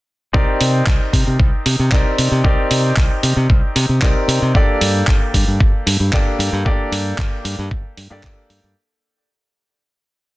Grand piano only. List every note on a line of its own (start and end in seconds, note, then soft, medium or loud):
0.33 1.89 C4 medium
0.33 1.89 D#4 medium
0.33 1.89 G4 medium
0.33 1.89 A#4 medium
0.33 1.90 D5 medium
1.92 2.42 C4 medium
1.92 2.42 D#4 medium
1.92 2.42 G4 medium
1.92 2.42 A#4 medium
1.92 2.42 D5 medium
2.44 3.99 C4 medium
2.44 3.99 D#4 medium
2.44 4.00 G4 medium
2.44 4.00 A#4 medium
2.44 4.00 D5 medium
4.02 4.52 C4 medium
4.02 4.52 D#4 medium
4.02 4.52 G4 medium
4.02 4.52 A#4 medium
4.02 4.52 D5 medium
4.54 6.10 A#3 medium
4.54 6.10 D4 medium
4.54 6.10 G4 medium
4.54 6.10 A4 medium
4.54 6.11 D5 medium
6.13 6.63 A#3 medium
6.13 6.63 D4 medium
6.13 6.63 G4 medium
6.13 6.63 A4 medium
6.13 6.63 D5 medium
6.65 8.08 A#3 medium
6.65 8.08 D4 medium
6.65 8.08 G4 medium
6.65 8.09 A4 medium
6.65 8.09 D5 medium
8.10 8.73 A#3 medium
8.10 8.73 D4 medium
8.10 8.73 G4 medium
8.10 8.74 A4 medium
8.10 8.74 D5 loud